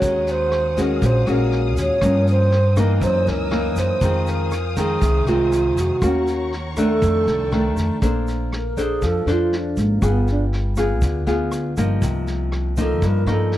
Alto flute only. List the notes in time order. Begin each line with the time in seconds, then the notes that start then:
Already playing: C#5
0.31 C5
0.81 A#4
1.05 C5
1.30 A#4
1.81 C#5
2.30 C5
2.79 A#4
3.04 C5
3.28 A#4
3.79 C5
4.29 A#4
4.79 G#4
5.28 F4
5.80 F#4
6.80 A4
8.56 A#4
8.79 G#4
9.06 A4
9.30 F4
9.56 D4
9.80 A#3
10.07 B3
10.31 D4
12.80 A4
13.06 A#4
13.30 A4